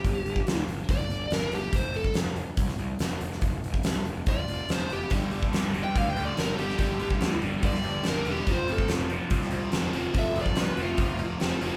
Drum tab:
HH |o-o-o-o-o-o-o-o-|o-o-o-o-o-o-o-o-|o-o-o-o-o-o-o-o-|o-o-o-o-o-o-o-o-|
SD |----o-------o---|----o----o--o--o|----o-------o---|----o-------o--o|
BD |o--o----o-------|o--o----o-------|o--o----o-------|o--o----o-------|

HH |o-o-o-o-o-o-o-o-|o-o-o-o-o-o-o-o-|o-o-o-o-o-o-o-o-|
SD |----o----o--o---|----o----o--o---|----o-------o---|
BD |o--o----o-------|o--o----o-------|o--o----o-------|